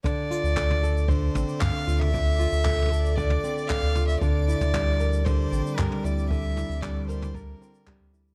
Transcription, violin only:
X:1
M:4/4
L:1/16
Q:1/4=115
K:Dm
V:1 name="Violin"
d8 c4 f3 e- | e8 d4 f3 e | d8 c4 B2 d2 | e4 d2 c2 B6 z2 |]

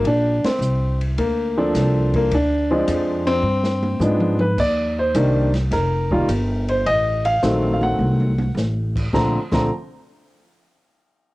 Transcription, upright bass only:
X:1
M:4/4
L:1/8
Q:"Swing" 1/4=106
K:Cdor
V:1 name="Upright bass" clef=bass
B,,, z C,,2 D,,2 C,,2 | D,,2 F,,2 G,,2 _A,,2 | E,,2 C,,2 F,,,2 G,,,2 | A,,,2 B,,,2 C,,2 A,,,2 |
B,,, B,,, z6 |]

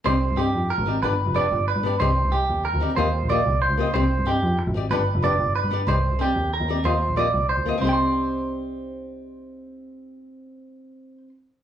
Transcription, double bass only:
X:1
M:12/8
L:1/16
Q:3/8=124
K:Cm
V:1 name="Double bass" clef=bass
C,,3 G,,3 F,,2 z A,,,3 G,,,2 z F,,,3 G,,,3 G,,3 | C,,2 z C,,3 E,,2 z D,,2 z E,,3 B,,,2 z C,,2 z _D,,2 z | C,,3 G,,3 F,,2 z A,,,3 G,,,2 z F,,,3 G,,,3 G,,3 | C,,2 z C,,3 E,,2 z E,,2 z E,,3 B,,,2 z C,,2 z D,,2 z |
C,,24- | C,,24 |]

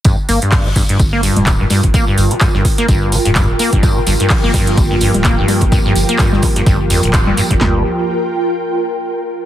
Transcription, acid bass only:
X:1
M:4/4
L:1/16
Q:"Swing 16ths" 1/4=127
K:Gm
V:1 name="Acid bass" clef=bass
G,, z B, G,,2 D, G,, G,, z B, G,,2 D, G,, G,, z | B, G,,2 D, G,, G,, z B, G,,2 D, G,, G,, z B, G,,- | G,, D, G,, G,, z B, G,,2 D, G,, G,, z B, G,,2 D, | G,, G,, z B, G,,2 D, G,, G,, z F,, G,,, z G,, G,, G,, |
G,,2 z12 z2 |]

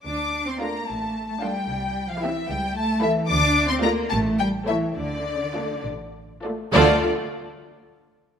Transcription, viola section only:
X:1
M:6/8
L:1/8
Q:3/8=71
K:Dm
V:1 name="Viola section"
z2 [A,D] z2 [A,D] | z2 [CE] z2 [A,E] | z2 [A,F] z2 [A,E] | z2 [A,F] z2 [A,F] |
[A,F] z4 z |]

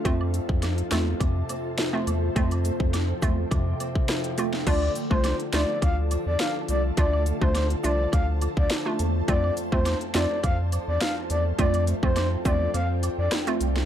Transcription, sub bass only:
X:1
M:4/4
L:1/16
Q:1/4=104
K:Dm
V:1 name="Sub bass" clef=bass
F,,3 F,,3 E,,2 F,,2 z4 E,,2 | F,,3 F,,3 E,,2 F,,2 z6 | D,,2 z C,,2 z D,, z D,,3 E,, z2 C,,2 | D,,3 D,,3 C,,2 D,,3 D,, z2 E,,2 |
F,,2 z E,,2 z F,, z F,,3 E,, z2 E,,2 | F,,3 F,,3 E,,2 F,,3 F,, z2 C,,2 |]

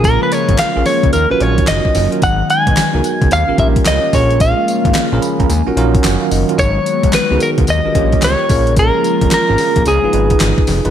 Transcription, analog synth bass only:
X:1
M:4/4
L:1/16
Q:"Swing 16ths" 1/4=110
K:A#phr
V:1 name="Analog synth bass" clef=bass
A,,,2 z G,,, z A,,, z C,, D,, A,,, A,,,2 F,,, z F,,, z | G,,,2 z B,,, z C,, z C,, D,, A,,, A,,,2 C,, z A,,,2- | A,,,2 z G,,, z A,,, z C,, D,, A,,, A,,,2 F,,, z F,,, z | G,,,2 z B,,, z C,, z C,, D,, A,,, A,,,2 C,, z A,,,2- |
A,,,2 z E,,, z G,,, z A,,, C,, G,,, G,,,2 G,,, z E,,, F,,, |]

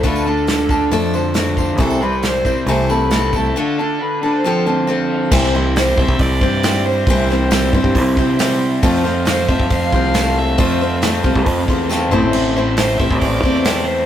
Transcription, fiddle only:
X:1
M:4/4
L:1/8
Q:1/4=137
K:C
V:1 name="Fiddle"
B A3 z4 | A B c2 c B2 A- | A2 B c4 z | z2 c e d3 c- |
c2 z6 | z2 c e f3 e- | e2 z6 | z2 c e d3 c |]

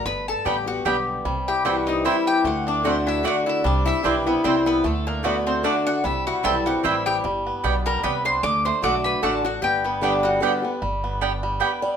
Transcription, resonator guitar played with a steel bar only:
X:1
M:3/4
L:1/16
Q:"Swing" 1/4=150
K:G
V:1 name="Resonator guitar played with a steel bar"
B2 A2 G2 F2 G2 z2 | z2 G2 F2 _E2 =E2 G2 | F2 D2 C2 E2 F2 E2 | D2 E2 D2 B,2 C2 B,2 |
A,2 _B,2 =B,2 C2 D2 F2 | E2 F2 A2 F2 E2 G2 | z6 _B2 =B2 c2 | d2 c2 d2 B2 A2 F2 |
G2 B,2 D2 F4- F z | z12 |]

